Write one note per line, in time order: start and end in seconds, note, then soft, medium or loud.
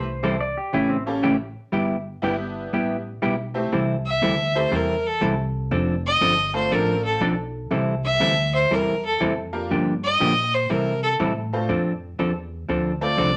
0.00 0.53 C2 medium
0.00 0.38 C5 loud
0.23 0.35 C3 medium
0.23 0.35 E3 medium
0.23 0.35 G3 medium
0.23 0.35 C4 medium
0.23 0.35 E4 medium
0.23 0.35 A4 medium
0.41 0.56 D5 medium
0.57 0.73 G4 medium
0.73 1.53 A1 medium
0.73 0.96 C#3 medium
0.73 0.96 E3 medium
0.73 0.96 A3 medium
0.73 0.96 C#4 medium
0.73 0.90 E4 medium
0.73 0.96 G4 medium
0.89 1.05 C4 medium
1.06 1.21 A#3 medium
1.06 1.33 C#4 medium
1.06 1.21 C#4 medium
1.06 1.21 G4 medium
1.06 1.22 A4 medium
1.23 1.35 C#3 medium
1.23 1.35 E3 medium
1.23 1.35 A3 medium
1.23 1.35 C#4 medium
1.23 1.35 G4 medium
1.72 2.13 G1 medium
1.72 1.95 G3 medium
1.72 1.96 B3 medium
1.72 1.95 E4 medium
1.72 1.96 G4 medium
2.22 2.65 G1 medium
2.22 2.35 G3 medium
2.22 2.99 B3 medium
2.22 2.35 B3 medium
2.22 2.99 D4 medium
2.22 2.99 E4 medium
2.22 2.35 E4 medium
2.22 2.99 G4 medium
2.22 2.35 G4 medium
2.73 3.15 A1 medium
2.73 2.96 G3 medium
2.73 2.96 B3 medium
2.73 2.96 E4 medium
2.73 2.96 G4 medium
3.22 3.65 B1 medium
3.22 3.34 G3 medium
3.22 3.34 B3 medium
3.22 3.34 E4 medium
3.22 3.35 G4 medium
3.54 3.70 A3 medium
3.54 3.70 C4 medium
3.54 3.70 E4 medium
3.54 3.70 G4 medium
3.72 4.21 C2 medium
3.72 3.95 C3 medium
3.72 3.95 E3 medium
3.72 3.95 G3 medium
3.72 3.95 C4 medium
3.72 3.95 E4 medium
3.72 3.95 A4 medium
4.06 4.57 E5 medium
4.22 4.70 D2 medium
4.22 4.34 C3 medium
4.22 4.34 E3 medium
4.22 4.35 G3 medium
4.22 4.34 C4 medium
4.22 4.35 E4 medium
4.22 4.34 A4 medium
4.55 4.70 A3 medium
4.55 4.70 C4 medium
4.55 4.70 E4 medium
4.55 4.70 G4 medium
4.55 4.71 A4 medium
4.55 4.76 C5 medium
4.71 5.20 E2 medium
4.71 4.95 C3 medium
4.71 4.95 E3 medium
4.71 4.95 G3 medium
4.71 4.95 C4 medium
4.71 4.95 E4 medium
4.71 4.95 A4 medium
4.71 5.08 A#4 medium
5.06 5.22 A4 medium
5.21 5.70 C2 medium
5.21 5.33 C3 medium
5.21 5.34 E3 medium
5.21 5.34 G3 medium
5.21 5.34 C4 medium
5.21 5.34 E4 medium
5.21 5.34 A4 medium
5.71 6.20 F1 medium
5.71 5.94 F3 medium
5.71 5.94 C4 medium
5.71 5.95 D4 medium
5.71 5.95 A4 medium
6.07 6.52 D#5 loud
6.21 6.70 G1 medium
6.21 6.33 F3 medium
6.21 6.33 C4 medium
6.21 6.34 D4 medium
6.21 6.34 A4 medium
6.53 7.17 A3 medium
6.53 7.17 C4 medium
6.53 7.17 D4 medium
6.53 7.17 F4 medium
6.53 7.17 A4 medium
6.53 6.75 C5 medium
6.71 7.19 A1 medium
6.71 6.94 F3 medium
6.71 6.94 C4 medium
6.71 6.94 D4 medium
6.71 6.95 A4 medium
6.71 7.04 A#4 medium
7.04 7.20 A4 medium
7.21 7.69 B1 medium
7.21 7.33 F3 medium
7.21 7.33 C4 medium
7.21 7.33 D4 medium
7.21 7.33 A4 medium
7.71 8.19 C2 medium
7.71 7.94 C3 medium
7.71 7.94 E3 medium
7.71 7.94 G3 medium
7.71 7.94 C4 medium
7.71 7.94 E4 medium
7.71 7.94 A4 medium
8.04 8.51 E5 loud
8.20 8.69 D2 medium
8.20 8.33 C3 medium
8.20 8.33 E3 medium
8.20 8.33 G3 medium
8.20 8.33 C4 medium
8.20 8.33 E4 medium
8.20 8.33 A4 medium
8.55 8.75 C5 medium
8.71 9.19 E2 medium
8.71 8.93 C3 medium
8.71 8.94 E3 medium
8.71 8.94 G3 medium
8.71 8.94 C4 medium
8.71 8.94 E4 medium
8.71 8.94 A4 medium
8.71 9.05 A#4 medium
9.05 9.20 A4 medium
9.20 9.69 F2 medium
9.20 9.32 C3 medium
9.20 9.32 E3 medium
9.20 9.32 G3 medium
9.20 9.33 C4 medium
9.20 9.33 E4 medium
9.20 9.33 A4 medium
9.53 9.68 A#3 medium
9.53 9.68 D4 medium
9.53 9.68 F4 medium
9.53 9.68 G4 medium
9.53 9.68 A#4 medium
9.71 10.19 G2 medium
9.71 9.93 D3 medium
9.71 9.93 F3 medium
9.71 9.94 A#3 medium
9.71 9.94 D4 medium
9.71 9.94 G4 medium
10.04 10.55 D#5 loud
10.20 10.69 A#2 medium
10.20 10.32 D3 medium
10.20 10.32 F3 medium
10.20 10.32 A#3 medium
10.20 10.32 D4 medium
10.20 10.33 G4 medium
10.54 10.73 C5 medium
10.69 10.92 C3 medium
10.69 11.18 C3 medium
10.69 10.93 E3 medium
10.69 10.93 G3 medium
10.69 10.93 C4 medium
10.69 10.93 E4 medium
10.69 10.93 A4 medium
10.69 11.02 A#4 medium
11.03 11.12 A4 medium
11.20 11.68 A2 medium
11.20 11.32 C3 medium
11.20 11.31 E3 medium
11.20 11.32 G3 medium
11.20 11.32 C4 medium
11.20 11.32 E4 medium
11.20 11.32 A4 medium
11.53 11.67 A3 medium
11.53 11.68 C4 medium
11.53 11.68 D4 medium
11.53 11.68 F4 medium
11.53 11.68 A4 medium
11.69 12.17 F2 medium
11.69 11.92 F3 medium
11.69 11.92 C4 medium
11.69 11.92 D4 medium
11.69 11.92 A4 medium
12.19 12.67 E2 medium
12.19 12.31 F3 medium
12.19 12.31 C4 medium
12.19 12.31 D4 medium
12.19 12.31 A4 medium
12.69 13.17 D2 medium
12.69 12.91 F3 medium
12.69 12.92 C4 medium
12.69 12.92 D4 medium
12.69 12.92 A4 medium
13.01 13.16 A3 medium
13.01 13.16 C4 medium
13.01 13.16 D4 medium
13.01 13.17 F4 medium
13.01 13.16 A4 medium
13.01 13.37 D5 medium
13.17 13.37 C2 medium
13.17 13.30 F3 medium
13.17 13.30 C4 medium
13.17 13.30 D4 medium
13.17 13.30 A4 medium